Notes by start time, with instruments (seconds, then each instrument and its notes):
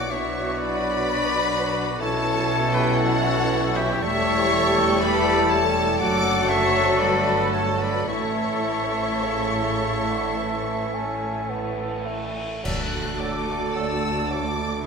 Already playing: double bass section B1, trombone section F#2, cello section B2, bassoon F#3, viola section F#4, violin section D5 D6, flute F#5
0.09 trombone section B2 F#3, french horn section B3 D4, viola section E4 F#4, trumpet F#4, violin section C#5 C#6, cor anglais D5, flute E5
0.58 violin section B4 B5, flute D5
1.06 viola section D4
1.53 viola section D4
1.99 double bass section B1, cello section B2, bassoon E3, trombone section E3, french horn section C#4 E4, viola section E4 F#4, trumpet A4, violin section A4 A5, cor anglais C#5, flute C#5
2.72 violin section G4 G5, flute B4
2.96 viola section C#4 E4, violin section F#4 F#5, flute A4
3.75 violin section E4 E5, flute G4
4.01 double bass section E1, cello section E2, trombone section E3 G3, bassoon G3, viola section A3 G4, french horn section A3 E4, cor anglais A4, trumpet A4, violin section C#5 C#6, flute E5
5.02 violin section B4 B5, flute D5
5.50 violin section A4 A5, flute C#5
5.98 double bass section F#1, cello section F#2, trombone section D3 F#3, bassoon F#3, french horn section A3 F#4, viola section A3 F#4, trumpet A4, cor anglais A4, violin section D5 D6, flute F#5
6.49 violin section C#5 C#6, flute E5
6.99 double bass section G1, cello section G2, violin section B4 B5, flute D5
7.52 violin section A4 A5, flute C#5
7.80 violin section B4 B5, flute D5
8.07 double bass section A1, cello section A2, bassoon E3, trombone section E3 A3, french horn section A3 E4, viola section A3 E4, trumpet A4, cor anglais A4, violin section C#5 C#6, flute E5
9.21 bassoon C#3
10.09 bassoon D3
10.37 bassoon E3
10.94 bassoon C#4
11.50 bassoon B3
12.06 bassoon A3
12.63 cello section D2, double bass section D2, trombone section D3 A3, bassoon F#3, viola section A3 F#4, french horn section D4 F#4, trumpet A4, violin section A4 D5 F#6, cor anglais A4, flute D5, concert bass drum, crash
13.19 bassoon F#3, cor anglais A4, flute D5, violin section D6
13.75 bassoon F#3, cor anglais A4, flute D5, violin section E6
14.29 bassoon F#3, cor anglais A4, flute D5, violin section D6